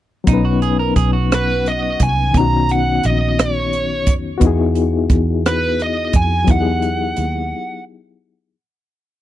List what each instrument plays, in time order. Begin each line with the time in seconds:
0.24 fingered electric bass B1, reed electric piano F#3 B3, kick, closed hi-hat
0.28 reed electric piano C#4 D#4, clean electric guitar D#4
0.33 reed electric piano B4
0.45 clean electric guitar F#4
0.62 clean electric guitar G#4, closed hi-hat
0.79 clean electric guitar A#4
0.96 fingered electric bass B1, clean electric guitar G#4, kick, closed hi-hat
1.13 clean electric guitar F#4
1.32 lead electric guitar B4, cross-stick, closed hi-hat
1.66 lead electric guitar D#5, closed hi-hat
2.00 fingered electric bass C2, lead electric guitar G#5, kick, closed hi-hat
2.31 reed electric piano D#3 B3, kick, closed hi-hat
2.35 fingered electric bass B1, reed electric piano C#4 D#4, lead electric guitar A#5
2.40 reed electric piano F#4
2.69 lead electric guitar F#5, closed hi-hat
3.03 fingered electric bass A#1, lead electric guitar D#5, closed hi-hat
3.39 lead electric guitar C#5, cross-stick, closed hi-hat
3.73 closed hi-hat
4.07 fingered electric bass F2, kick, closed hi-hat
4.38 reed electric piano B3 F#4, kick, closed hi-hat
4.42 fingered electric bass E2, reed electric piano D#4 E4
4.47 reed electric piano G#4
4.75 closed hi-hat
5.10 fingered electric bass E2, kick, closed hi-hat
5.46 lead electric guitar B4, cross-stick, closed hi-hat
5.79 lead electric guitar D#5, closed hi-hat
6.13 fingered electric bass F2, lead electric guitar G#5, kick, closed hi-hat
6.44 reed electric piano F#3 B3, kick, closed hi-hat
6.48 fingered electric bass E2, reed electric piano D#4 E4, lead electric guitar F#5
6.54 reed electric piano G4
6.60 reed electric piano G#4
6.82 closed hi-hat
7.16 fingered electric bass D#2, closed hi-hat